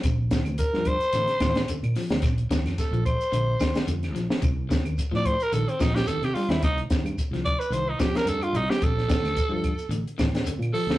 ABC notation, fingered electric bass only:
X:1
M:4/4
L:1/16
Q:"Swing 16ths" 1/4=109
K:Bb
V:1 name="Fingered electric bass" clef=bass
B,,,3 D,, z G,,2 z A,,, z A,,,2 z B,, z D,, | B,,,2 z F,, z B,,,2 z B,,,2 z2 F,,2 B,,, z | C,,3 E,, z A,,2 z B,,, z B,,,2 z C, z E,, | C,,2 z G,, z C,,2 z C,,2 z2 G,,2 C,, z |
B,,,3 D,, z G,,2 z A,,, z A,,,2 z B,, z D,, |]